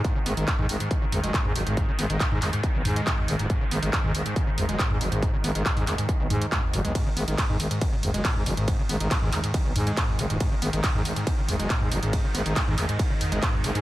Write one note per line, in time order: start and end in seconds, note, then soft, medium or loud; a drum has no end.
0.00 6.94 G#2 medium
0.00 6.94 D#3 medium
0.04 0.14 G#2 medium
0.04 kick loud
0.04 closed hi-hat medium
0.16 0.19 C#3 medium
0.26 0.34 G#1 loud
0.26 0.32 B3 medium
0.26 open hi-hat loud
0.37 0.45 G#1 loud
0.37 0.49 D#3 loud
0.37 closed hi-hat medium
0.48 0.54 G#2 medium
0.48 kick loud
0.48 clap loud
0.48 closed hi-hat medium
0.59 0.66 G#2 medium
0.59 0.67 D#3 medium
0.59 mid tom medium
0.69 0.77 G#1 medium
0.69 open hi-hat loud
0.80 0.89 G#2 loud
0.80 closed hi-hat medium
0.91 kick loud
0.91 closed hi-hat medium
1.02 1.05 C#3 medium
1.12 1.20 G#1 loud
1.12 mid tom medium
1.12 open hi-hat loud
1.23 1.31 F#1 medium
1.23 1.35 G#3 loud
1.23 closed hi-hat medium
1.34 1.57 G#2 medium
1.34 kick loud
1.34 clap loud
1.34 closed hi-hat medium
1.45 1.53 G#2 medium
1.45 mid tom medium
1.56 1.64 F#1 medium
1.56 1.62 D#3 medium
1.56 open hi-hat loud
1.67 1.82 G#1 medium
1.67 1.75 G#2 loud
1.67 closed hi-hat medium
1.77 kick loud
1.77 closed hi-hat medium
1.88 1.92 C#3 medium
1.99 2.07 G#1 loud
1.99 2.05 B3 medium
1.99 open hi-hat loud
2.10 2.17 G#1 loud
2.10 2.22 D#3 loud
2.10 closed hi-hat medium
2.20 2.26 G#2 medium
2.20 kick loud
2.20 clap loud
2.20 closed hi-hat medium
2.31 2.39 G#2 loud
2.31 2.40 D#3 medium
2.31 mid tom medium
2.42 2.50 G#1 medium
2.42 clap medium
2.42 mid tom medium
2.42 open hi-hat loud
2.53 2.62 G#2 loud
2.53 closed hi-hat medium
2.63 kick loud
2.63 closed hi-hat medium
2.75 2.82 B1 medium
2.75 2.78 C#3 medium
2.85 3.01 G#2 medium
2.85 mid tom loud
2.85 open hi-hat loud
2.96 3.08 G#3 loud
2.96 closed hi-hat medium
3.07 3.30 G#2 medium
3.07 kick loud
3.07 clap loud
3.07 closed hi-hat medium
3.18 mid tom medium
3.28 3.36 G#1 loud
3.28 3.34 D#3 medium
3.28 open hi-hat loud
3.39 3.47 D#1 medium
3.39 3.48 G#2 loud
3.39 closed hi-hat medium
3.50 kick loud
3.50 closed hi-hat medium
3.61 3.64 C#3 medium
3.71 3.79 G#1 loud
3.71 3.78 B3 medium
3.71 open hi-hat loud
3.83 3.90 G#1 loud
3.83 3.94 D#3 loud
3.83 closed hi-hat medium
3.93 3.99 G#2 medium
3.93 kick loud
3.93 clap loud
3.93 closed hi-hat medium
4.04 4.12 G#2 loud
4.04 4.13 D#3 medium
4.04 mid tom medium
4.15 4.23 G#1 medium
4.15 open hi-hat loud
4.26 4.34 G#2 loud
4.26 closed hi-hat medium
4.36 kick loud
4.36 closed hi-hat medium
4.47 4.51 C#3 medium
4.58 4.66 G#1 loud
4.58 mid tom loud
4.58 open hi-hat loud
4.69 4.76 F#1 medium
4.69 4.81 G#3 loud
4.69 closed hi-hat medium
4.79 5.02 G#2 medium
4.79 kick loud
4.79 clap loud
4.79 closed hi-hat medium
4.90 4.98 G#2 medium
4.90 mid tom medium
5.01 5.09 F#1 medium
5.01 5.07 D#3 medium
5.01 open hi-hat loud
5.12 5.27 G#1 medium
5.12 5.21 G#2 loud
5.12 closed hi-hat medium
5.22 5.32 G#2 medium
5.22 kick loud
5.22 closed hi-hat medium
5.33 5.37 C#3 medium
5.44 5.52 G#1 loud
5.44 5.50 B3 medium
5.44 open hi-hat loud
5.55 5.63 G#1 loud
5.55 5.67 D#3 loud
5.55 closed hi-hat medium
5.65 5.72 G#2 medium
5.65 kick loud
5.65 clap loud
5.65 closed hi-hat medium
5.77 5.84 G#2 medium
5.77 5.85 D#3 medium
5.77 mid tom medium
5.77 open hi-hat medium
5.87 5.95 G#1 medium
5.87 clap medium
5.87 mid tom medium
5.87 open hi-hat loud
5.98 6.07 G#2 loud
5.98 closed hi-hat medium
6.09 kick loud
6.09 closed hi-hat medium
6.20 6.27 B1 medium
6.20 6.23 C#3 medium
6.30 6.36 G#2 loud
6.30 6.46 G#2 medium
6.30 mid tom medium
6.30 open hi-hat loud
6.41 6.47 G#2 medium
6.41 closed hi-hat medium
6.52 6.61 G#2 loud
6.52 kick loud
6.52 clap loud
6.52 closed hi-hat medium
6.63 mid tom medium
6.73 6.82 F#1 loud
6.73 6.80 G#2 medium
6.73 open hi-hat loud
6.85 6.92 B1 medium
6.85 6.93 G#3 medium
6.85 closed hi-hat medium
6.85 mid tom medium
6.95 7.04 G#2 medium
6.95 13.81 G#2 medium
6.95 13.81 D#3 medium
6.95 kick loud
6.95 closed hi-hat medium
6.95 ride medium
7.06 7.10 C#3 medium
7.17 7.25 G#1 loud
7.17 7.23 B3 medium
7.17 open hi-hat loud
7.28 7.35 G#1 medium
7.28 7.40 D#3 loud
7.28 closed hi-hat medium
7.38 7.44 G#2 medium
7.38 kick loud
7.38 clap loud
7.38 closed hi-hat medium
7.38 ride medium
7.49 7.57 G#2 medium
7.49 7.58 D#3 medium
7.49 mid tom medium
7.60 7.68 G#1 loud
7.60 open hi-hat loud
7.71 7.80 G#2 loud
7.71 closed hi-hat medium
7.81 kick loud
7.81 closed hi-hat medium
7.81 ride medium
7.93 7.96 C#3 medium
8.03 8.11 G#1 loud
8.03 mid tom medium
8.03 open hi-hat loud
8.14 8.22 F#1 medium
8.14 8.26 G#3 loud
8.14 closed hi-hat medium
8.25 8.48 G#2 medium
8.25 kick loud
8.25 clap loud
8.25 closed hi-hat medium
8.25 ride medium
8.36 8.43 G#2 medium
8.36 mid tom medium
8.46 8.54 F#1 medium
8.46 8.52 D#3 medium
8.46 open hi-hat loud
8.57 8.73 G#1 medium
8.57 8.66 G#2 loud
8.57 closed hi-hat medium
8.68 8.77 G#2 medium
8.68 kick loud
8.68 closed hi-hat medium
8.68 ride medium
8.79 8.82 C#3 medium
8.89 8.97 G#1 loud
8.89 8.95 B3 medium
8.89 open hi-hat loud
9.00 9.08 G#1 loud
9.00 9.12 D#3 loud
9.00 closed hi-hat medium
9.11 9.17 G#2 medium
9.11 kick loud
9.11 clap loud
9.11 closed hi-hat medium
9.11 ride medium
9.22 9.30 G#2 loud
9.22 9.31 D#3 medium
9.22 mid tom medium
9.32 9.41 G#1 medium
9.32 clap medium
9.32 mid tom medium
9.32 open hi-hat loud
9.44 9.52 G#2 loud
9.44 closed hi-hat medium
9.54 9.58 G#2 medium
9.54 kick loud
9.54 closed hi-hat medium
9.54 ride medium
9.65 9.73 B1 medium
9.65 9.69 C#3 medium
9.76 9.91 G#2 medium
9.76 mid tom medium
9.76 open hi-hat loud
9.87 9.99 G#3 loud
9.87 closed hi-hat medium
9.97 10.21 G#2 medium
9.97 kick loud
9.97 clap loud
9.97 closed hi-hat medium
9.97 ride medium
10.08 mid tom medium
10.19 10.27 G#1 loud
10.19 10.25 D#3 medium
10.19 open hi-hat loud
10.30 10.38 D#1 medium
10.30 10.39 G#2 loud
10.30 closed hi-hat medium
10.40 10.50 G#2 medium
10.40 kick loud
10.40 closed hi-hat medium
10.40 ride medium
10.52 10.55 C#3 medium
10.62 10.70 G#1 loud
10.62 10.68 B3 medium
10.62 open hi-hat loud
10.73 10.81 G#1 loud
10.73 10.85 D#3 loud
10.73 closed hi-hat medium
10.84 10.90 G#2 medium
10.84 kick loud
10.84 clap loud
10.84 closed hi-hat medium
10.84 ride medium
10.95 11.02 G#2 loud
10.95 11.03 D#3 medium
10.95 mid tom medium
11.05 11.13 G#1 medium
11.05 open hi-hat loud
11.16 11.25 G#2 loud
11.16 closed hi-hat medium
11.27 kick loud
11.27 closed hi-hat medium
11.27 ride medium
11.38 11.41 C#3 medium
11.48 11.56 G#1 loud
11.48 mid tom medium
11.48 open hi-hat loud
11.59 11.67 F#1 medium
11.59 11.71 G#3 medium
11.59 closed hi-hat medium
11.70 11.93 G#2 medium
11.70 kick loud
11.70 clap loud
11.70 closed hi-hat medium
11.70 ride medium
11.81 11.89 G#2 medium
11.81 mid tom medium
11.91 12.00 F#1 medium
11.91 11.98 D#3 medium
11.91 open hi-hat loud
12.03 12.18 G#1 medium
12.03 12.11 G#2 loud
12.03 closed hi-hat medium
12.13 12.22 G#2 medium
12.13 kick loud
12.13 closed hi-hat medium
12.13 ride medium
12.24 12.28 C#3 medium
12.35 12.43 G#1 loud
12.35 12.41 B3 medium
12.35 open hi-hat loud
12.46 12.53 G#1 loud
12.46 12.58 D#3 loud
12.46 closed hi-hat medium
12.56 12.62 G#2 medium
12.56 kick loud
12.56 clap loud
12.56 closed hi-hat medium
12.56 ride medium
12.67 12.75 G#2 loud
12.67 12.76 D#3 medium
12.67 mid tom medium
12.78 12.86 G#1 medium
12.78 clap medium
12.78 mid tom medium
12.78 open hi-hat loud
12.89 12.98 G#2 loud
12.89 closed hi-hat medium
12.99 kick loud
12.99 closed hi-hat medium
12.99 ride medium
13.10 13.14 C#3 medium
13.21 mid tom medium
13.21 open hi-hat loud
13.32 13.40 G#1 medium
13.32 13.44 G#3 loud
13.32 closed hi-hat medium
13.42 13.66 G#2 medium
13.42 kick loud
13.42 clap loud
13.42 closed hi-hat medium
13.42 ride medium
13.54 mid tom medium
13.64 13.72 G#1 medium
13.64 13.70 D#3 medium
13.64 open hi-hat loud
13.75 13.81 G#2 loud
13.75 13.81 G#2 medium
13.75 closed hi-hat medium